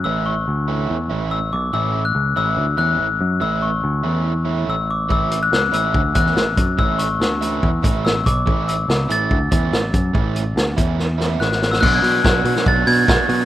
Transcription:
<<
  \new Staff \with { instrumentName = "Glockenspiel" } { \time 4/4 \key a \major \tempo 4 = 143 e'''8 cis'''4 r4. e'''8 d'''8 | e'''8. fis'''8. e'''4 fis'''4. | e'''8 cis'''4 r4. e'''8 d'''8 | e'''8. fis'''8. e'''4 fis'''4. |
e'''8 cis'''4 r4. e'''8 d'''8~ | d'''8 e'''4 a'''2~ a'''8~ | a'''2. fis'''8. e'''16 | \tuplet 3/2 { fis'''8 gis'''16 fis'''8.~ } fis'''4 a'''8 gis'''4. | }
  \new Staff \with { instrumentName = "Overdriven electric guitar" } { \time 4/4 \key a \major <e a cis' e'>8 r4 <e a cis' e'>8 r8 <e a cis' e'>8 r4 | <e a cis' e'>8 r4 <e a cis' e'>8 r8 <e a cis' e'>8 r4 | <e a cis' e'>8 r4 <e a cis' e'>8 r8 <e a cis' e'>8 r4 | <e a cis' e'>8 r4 <e a cis' e'>8 r8 <e a cis' e'>8 r4 |
<e a cis' e'>8 r4 <e a cis' e'>8 r8 <e a cis' e'>8 r4 | <e a cis' e'>8 r4 <e a cis' e'>8 r8 <e a cis' e'>8 r4 | <e a cis' e'>8 r4 <e a cis' e'>8 r8 <e a cis' e'>8 r4 | <b, fis b d' fis'>8 <b, fis b d' fis'>8 <b, fis b d' fis'>8 <b, fis b d' fis'>8 <b, fis b d' fis'>8 <b, fis b d' fis'>8 <b, fis b d' fis'>8 <b, fis b d' fis'>8 | }
  \new Staff \with { instrumentName = "Clean electric guitar" } { \clef bass \time 4/4 \key a \major a,4 d4 e8 a,4 b,8 | a,4 cis8 a,8 d8 e8 a,8 fis8 | a,4 d8 e4. a,4 | a,4 cis8 a,8 d8 e8 a,8 fis8 |
a,4 d4 e8 a,4 b,8 | a,4 cis8 a,8 d8 e8 a,8 fis8 | a,4 d8 e4. a,4 | <b, fis b d' fis'>8 <b, fis b d' fis'>8 <b, fis b d' fis'>8 <b, fis b d' fis'>8 <b, fis b d' fis'>8 <b, fis b d' fis'>8 <b, fis b d' fis'>8 <b, fis b d' fis'>8 | }
  \new Staff \with { instrumentName = "Picked electric bass" } { \clef bass \time 4/4 \key a \major a,,4 d,4 e,8 a,,4 b,,8 | a,,4 cis,8 a,,8 d,8 e,8 a,,8 fis,8 | a,,4 d,8 e,4. a,,4 | a,,4 cis,8 a,,8 d,8 e,8 a,,8 fis,8 |
a,,4 d,4 e,8 a,,4 b,,8 | a,,4 cis,8 a,,8 d,8 e,8 a,,8 fis,8 | a,,4 d,8 e,4. a,,4 | b,,8 b,8 b,,8 b,16 r16 b,,8 b,8 b,,16 r16 b,8 | }
  \new DrumStaff \with { instrumentName = "Drums" } \drummode { \time 4/4 r4 r4 r4 r4 | r4 r4 r4 r4 | r4 r4 r4 r4 | bd8 hh8 sn8 hh8 bd8 <hh bd>16 sn16 sn8 <hh bd>8 |
bd8 hh8 sn8 hh8 bd8 <hh bd>8 sn8 <hh bd>8 | bd8 hh8 sn8 hh8 bd8 <hh bd>8 sn8 <hh bd>8 | bd8 hh8 sn8 <hh bd>8 sn8 sn8 sn16 sn16 sn16 sn16 | <cymc bd>8 hho8 <bd sn>8 hho16 sn16 bd8 hho8 <bd sn>8 hho8 | }
>>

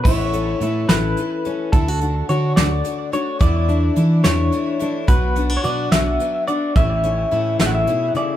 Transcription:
<<
  \new Staff \with { instrumentName = "Clean electric guitar" } { \time 6/8 \key a \major \tempo 4. = 72 cis''4. b'4. | a'4 cis''8 d''4 cis''8 | d''4. cis''4. | b'8.~ b'32 cis''32 d''8 e''4 d''8 |
e''4. e''32 fis''32 e''8. d''16. r32 | }
  \new Staff \with { instrumentName = "Steel-string acoustic guitar" } { \time 6/8 \key a \major << { e'8 cis'8 e'4. cis'8 | e'16 fis'16 fis'8 fis'4. fis'8 | e'8 d'8 e'4. d'8 | fis'8 b16 d'16 fis'4. d'8 |
e'8 cis'8 e'2 | } \\ { a,4 r8 e4 r8 | d4 r8 a4 r8 | e,4 r8 e4 r8 | b,4 r8 d4 r8 |
a,4 r8 a,8 b,8 cis8 | } >> }
  \new Staff \with { instrumentName = "Upright piano" } { \time 6/8 \key a \major r2. | r2. | r2. | r2. |
<a cis' e' cis''>4. <a cis' e' gis'>4. | }
  \new Staff \with { instrumentName = "Upright piano" } { \clef bass \time 6/8 \key a \major r2. | r2. | r2. | r2. |
<a,, a,>2. | }
  \new Staff \with { instrumentName = "Twelve-string acoustic guitar" } { \time 6/8 \key a \major <a, e a cis' a'>8 <a cis' a'>8 <e a cis' a'>8 <a, e a cis' a'>8 <e a cis' a'>8 <a cis' a'>8 | <d a d' fis'>8 <a d' fis'>8 <d a d' fis'>8 <d a d' fis'>8 <d a d' fis'>8 <a d' fis'>8 | <e, b, e a d' e'>8 <e a d' e'>8 <e a d' e'>8 <e, b, e a d' e'>8 <e a d' e'>8 <e a d' e'>8 | <b, fis b d' fis'>8 <b d' fis'>8 <fis b d' fis'>8 <b, fis b d' fis'>8 <fis b d' fis'>8 <b d' fis'>8 |
<a, e a cis' e'>8 <a cis' e'>8 <e a cis' e'>8 <a, e a cis' e'>8 <e a cis' e'>8 <a cis' e'>8 | }
  \new Staff \with { instrumentName = "Picked electric bass" } { \clef bass \time 6/8 \key a \major a,,4 a,8 a,,8 r4 | d,4 d8 d,8 r4 | e,4 e8 e,8 r4 | b,,4 b,8 b,,8 r4 |
a,,4 a,8 a,,8 r4 | }
  \new DrumStaff \with { instrumentName = "Drums" } \drummode { \time 6/8 <cymc bd>8 hh8 hh8 <hh sn>8 hh8 hh8 | <hh bd>8 hh8 hh8 <hh sn>8 hh8 hh8 | <hh bd>8 hh8 hh8 <hh sn>8 hh8 hh8 | <hh bd>8 hh8 hh8 <hh sn>8 hh8 hh8 |
<hh bd>8 hh8 hh8 <hh sn>8 hh8 hh8 | }
>>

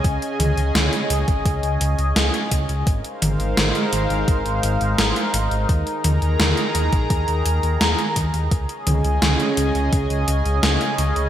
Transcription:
<<
  \new Staff \with { instrumentName = "Analog synth pad" } { \time 4/4 \key des \lydian \tempo 4 = 85 << { <des aes' ees'' aes''>1 | <aes bes' c'' f''>1 | <ees aes' bes' bes''>1 | <des aes' ees'' aes''>1 | } \\ { des'1 | ees'1~ | ees'1 | des'1 | } >> }
  \new Staff \with { instrumentName = "Detuned saw bass" } { \clef bass \time 4/4 \key des \lydian des,16 r16 des,16 des,16 des,16 r16 des,16 aes,,16 des,16 des,16 des,16 des,16 des,16 r16 des,16 des,16 | aes,,16 r16 aes,,16 aes,,16 aes,,16 r16 aes,,16 aes,,16 aes,,16 aes,,16 aes,,16 aes,,16 aes,,16 r16 aes,,16 aes,,16 | ees,16 r16 ees,16 ees,16 ees,16 r16 ees,16 bes,,16 ees,16 ees,16 ees,16 ees,16 ees,16 r16 ees,16 ees,16 | des,16 r16 des,16 des,16 des,16 r16 des,16 des,16 des,16 des,16 des,16 des,16 des,16 r16 des,16 des,16 | }
  \new DrumStaff \with { instrumentName = "Drums" } \drummode { \time 4/4 <hh bd>16 hh16 <hh toml>16 hh16 <hh sn toml>16 hh16 hh16 <hh bd>16 <hh bd>16 hh16 hh16 hh16 <hh sn>16 hh16 <hh bd>16 hh16 | <hh bd>16 hh16 <hh toml>16 hh16 <hh sn toml>16 hh16 hh16 hh16 <hh bd>16 hh16 hh16 hh16 <hh sn>16 hh16 hh16 hh16 | <hh bd>16 hh16 <hh toml>16 hh16 <hh sn toml>16 hh16 hh16 <hh bd>16 <hh bd>16 hh16 hh16 hh16 <hh sn>16 hh16 <hh bd>16 hh16 | <hh bd>16 hh16 <hh toml>16 hh16 <hh sn toml>16 hh16 hh16 hh16 <hh bd>16 hh16 hh16 hh16 <hh sn>16 hh16 hh16 hh16 | }
>>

